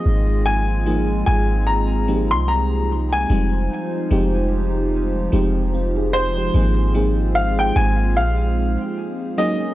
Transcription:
Already playing: F3 G#3 A#3 C4 D#4 F4 G#4 D#5
0.06 G#1
0.46 G#5
0.86 F3 A#3 C4 D#4 G#4
1.26 G#1 G#5
1.67 A#5
2.08 F3 A#3 C4 D#4 G4
2.16 G#4
2.31 C2 C6
2.48 A#5
3.13 G#5
3.29 F1 F3 G3 G#3 C4 D#4 F4 C5
4.11 F1 F3 G#3 C4 D#4 G4
5.32 F1 F3 G#3 C4 D#4 G4
5.74 C4 F4
5.97 D#4 G#4
6.13 C5
6.37 G4 C5
6.54 G#1 F3 G#3 A#3 C4 D#4 F4 G#4
6.94 F3 A#3 C4 D#4 G#4
7.35 F5
7.59 G5
7.76 G#1 G#5
8.17 A#1 F5
9.38 F#3 A#3 C#4 D#4 G#4 A#4 D#5

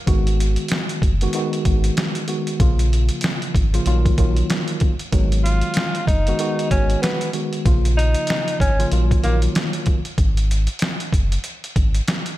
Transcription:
0.07 G#1 D#3 G#3 B3 F#4, kick, closed hi-hat
0.27 closed hi-hat
0.40 closed hi-hat
0.56 closed hi-hat
0.68 snare, closed hi-hat
0.89 closed hi-hat
1.02 F#1, kick, closed hi-hat
1.21 D#3 G#3 B3 F#4, closed hi-hat
1.33 D#3 G#3 B3 F#4, closed hi-hat
1.53 closed hi-hat
1.65 G#1, kick, closed hi-hat
1.84 closed hi-hat
1.97 snare, closed hi-hat
2.15 closed hi-hat
2.28 D#3 G#3 B3 F#4, closed hi-hat
2.47 closed hi-hat
2.60 A#1 C#3 F3 A#3 F4, kick, closed hi-hat
2.79 closed hi-hat
2.93 closed hi-hat
3.09 closed hi-hat
3.21 snare, closed hi-hat
3.42 closed hi-hat
3.55 G#1, kick, closed hi-hat
3.73 C#3 F3 A#3 F4, closed hi-hat
3.86 A#1 D#3 F#3 A#3 F4, closed hi-hat
4.06 kick, closed hi-hat
4.18 A#1 D#3 F#3 A#3 F4, kick, closed hi-hat
4.37 closed hi-hat
4.50 snare, closed hi-hat
4.68 closed hi-hat
4.80 kick, closed hi-hat
4.99 closed hi-hat
5.12 G#1 D#3 F#3 G#3 B3, kick, closed hi-hat
5.32 closed hi-hat
5.44 F4, closed hi-hat
5.61 closed hi-hat
5.74 snare, closed hi-hat
5.95 closed hi-hat
6.07 F#1 D#4, kick, closed hi-hat
6.27 D#3 G#3 B3 F#4, closed hi-hat
6.39 D#3 G#3 B3 F#4, closed hi-hat
6.59 closed hi-hat
6.71 G#1 C#4, kick, closed hi-hat
6.90 closed hi-hat
7.02 B3, snare, closed hi-hat
7.21 closed hi-hat
7.33 D#3 G#3 B3 F#4, closed hi-hat
7.53 closed hi-hat
7.65 A#1 C#3 F3 A#3 F4, kick, closed hi-hat
7.85 closed hi-hat
7.97 D#4, closed hi-hat
8.14 closed hi-hat
8.27 snare, closed hi-hat
8.48 closed hi-hat
8.60 G#1 C#4, kick, closed hi-hat
8.79 C#3 F3 A#3 F4, closed hi-hat
8.91 A#1 D#3 F#3 A#3 F4, closed hi-hat
9.11 kick, closed hi-hat
9.23 A#1 D#3 F#3 A#3 F4, closed hi-hat
9.42 closed hi-hat
9.55 snare, closed hi-hat
9.73 closed hi-hat
9.86 kick, closed hi-hat
10.05 closed hi-hat
10.18 G#1, kick, closed hi-hat
10.37 closed hi-hat
10.51 closed hi-hat
10.67 closed hi-hat
10.79 snare, closed hi-hat
11.00 closed hi-hat
11.13 F#1, kick, closed hi-hat
11.32 closed hi-hat
11.44 closed hi-hat
11.64 closed hi-hat
11.76 G#1, kick, closed hi-hat
11.95 closed hi-hat
12.08 snare, closed hi-hat
12.26 closed hi-hat

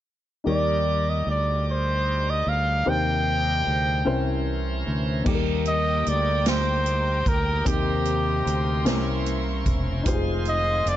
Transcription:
0.44 D#2 G3 D#4 G4 A#4 D5
0.48 D5
1.10 D#5
1.27 D2 D5
1.71 C5
2.30 D#5
2.47 D2 F5
2.85 D#2 C3 D#4 G4 A#4 C5 G5
3.67 D2
4.05 C2 C3 E3 C#4 E4 A#4 C5
4.87 D2
5.24 D#2 G3 A#3 D#4 G4 G5 A#5 D6, kick, crash
5.28 D#4 G4 A4
5.34 A#4
5.65 D#5, closed hi-hat
6.06 D2 D5, closed hi-hat
6.46 C5, snare, closed hi-hat
6.86 closed hi-hat
7.26 D2 A#4, kick, closed hi-hat
7.65 D#2 C3 C4 D#4 G4 A#4 C5 C6, kick, closed hi-hat
8.05 closed hi-hat
8.46 D2, closed hi-hat
8.85 C2 C3 C#4 E4 A#4 C5 E5 C#6, snare, closed hi-hat
9.26 closed hi-hat
9.66 E1, kick, closed hi-hat
10.03 F1 D#3 G#3 D#4 F4 G4 F5 G#5 C6, kick, closed hi-hat
10.08 C5
10.13 G#4
10.45 D#5, closed hi-hat
10.86 F1 D5, closed hi-hat

